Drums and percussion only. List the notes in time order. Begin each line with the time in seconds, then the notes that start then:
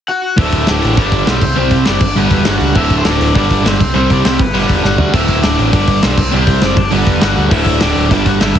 0.38 kick, open hi-hat
0.52 kick, open hi-hat
0.67 snare, open hi-hat
0.82 open hi-hat
0.97 kick, open hi-hat
1.12 kick, open hi-hat
1.27 snare, open hi-hat
1.41 kick, crash
1.71 kick, open hi-hat
1.85 snare, open hi-hat
2.01 kick, crash
2.31 kick, open hi-hat
2.45 snare, open hi-hat
2.60 open hi-hat
2.75 kick, crash
2.90 kick, open hi-hat
3.05 snare, open hi-hat
3.21 open hi-hat
3.35 kick, open hi-hat
3.51 kick, open hi-hat
3.66 snare, open hi-hat
3.80 kick, crash
4.10 kick, open hi-hat
4.25 snare, open hi-hat
4.39 kick, open hi-hat
4.55 open hi-hat
4.69 kick, open hi-hat
4.85 snare
4.98 floor tom
5.14 kick, open hi-hat, crash
5.28 kick, open hi-hat
5.43 snare, open hi-hat
5.59 open hi-hat
5.73 kick, open hi-hat
5.88 kick, open hi-hat
6.03 snare, open hi-hat
6.17 kick, crash
6.47 kick, open hi-hat
6.62 snare, open hi-hat
6.77 kick, open hi-hat
6.92 open hi-hat
7.06 kick, open hi-hat
7.21 snare, open hi-hat
7.37 open hi-hat
7.51 kick, crash
7.66 kick, open hi-hat
7.81 snare, open hi-hat
7.96 open hi-hat
8.11 kick, open hi-hat
8.26 kick, open hi-hat
8.41 snare, open hi-hat
8.55 kick, open hi-hat